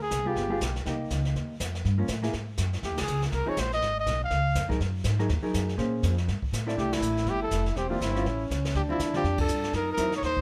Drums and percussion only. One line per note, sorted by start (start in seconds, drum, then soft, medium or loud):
0.11 kick soft
0.11 snare medium
0.11 hi-hat pedal soft
0.36 brush sweep soft
0.36 kick soft
0.36 snare soft
0.61 kick soft
0.61 snare medium
0.61 hi-hat pedal medium
0.76 snare soft
0.86 brush sweep soft
0.86 kick soft
0.86 snare soft
1.10 kick soft
1.10 snare soft
1.10 hi-hat pedal soft
1.25 snare soft
1.36 brush sweep soft
1.36 kick soft
1.36 snare soft
1.60 kick soft
1.60 snare medium
1.60 hi-hat pedal medium
1.75 snare soft
1.85 brush sweep soft
1.85 kick soft
1.85 snare soft
2.08 kick soft
2.08 snare medium
2.08 hi-hat pedal soft
2.23 snare soft
2.33 brush sweep soft
2.33 kick soft
2.33 snare soft
2.57 kick soft
2.57 snare medium
2.57 hi-hat pedal medium
2.73 snare soft
2.83 brush sweep soft
2.83 kick soft
2.83 snare soft
2.97 snare medium
2.97 ride medium
3.07 hi-hat pedal medium
3.22 snare soft
3.32 brush sweep soft
3.32 kick soft
3.32 snare soft
3.57 kick soft
3.57 snare medium
3.57 hi-hat pedal medium
3.72 snare soft
3.82 brush sweep soft
3.82 kick soft
3.82 snare soft
4.06 kick soft
4.06 snare medium
4.06 hi-hat pedal soft
4.30 brush sweep soft
4.30 kick soft
4.30 snare soft
4.55 kick soft
4.55 snare medium
4.55 hi-hat pedal medium
4.70 kick medium
4.70 snare soft
4.80 brush sweep soft
4.80 kick soft
4.80 snare soft
5.04 kick soft
5.04 snare medium
5.04 hi-hat pedal medium
5.19 snare soft
5.29 brush sweep soft
5.29 kick soft
5.29 snare soft
5.54 kick soft
5.54 snare medium
5.54 hi-hat pedal medium
5.69 snare soft
5.78 brush sweep soft
5.78 kick soft
5.78 snare soft
6.03 kick soft
6.03 snare medium
6.03 hi-hat pedal soft
6.18 snare soft
6.28 brush sweep soft
6.28 kick soft
6.28 snare soft
6.42 kick soft
6.53 kick soft
6.53 snare medium
6.53 hi-hat pedal medium
6.69 snare soft
6.77 brush sweep soft
6.77 kick soft
6.77 snare soft
6.92 snare medium
6.92 ride medium
7.02 hi-hat pedal medium
7.17 snare soft
7.26 brush sweep soft
7.26 kick soft
7.26 snare soft
7.51 kick soft
7.51 snare soft
7.51 hi-hat pedal medium
7.66 snare soft
7.76 brush sweep soft
7.76 kick soft
7.76 snare soft
8.01 kick soft
8.01 snare medium
8.01 hi-hat pedal soft
8.16 snare soft
8.26 brush sweep soft
8.26 kick soft
8.26 snare soft
8.50 kick soft
8.50 snare medium
8.50 hi-hat pedal medium
8.65 snare medium
8.75 brush sweep soft
8.75 kick soft
8.75 snare soft
8.99 kick soft
8.99 snare medium
8.99 hi-hat pedal soft
9.14 snare soft
9.24 brush sweep soft
9.24 kick soft
9.24 snare soft
9.38 kick medium
9.38 ride medium
9.48 hi-hat pedal medium
9.63 snare soft
9.73 brush sweep soft
9.73 kick soft
9.73 snare soft
9.97 kick soft
9.97 snare soft
9.97 hi-hat pedal medium
10.12 snare soft
10.22 brush sweep soft
10.22 kick soft
10.22 snare soft
10.37 kick soft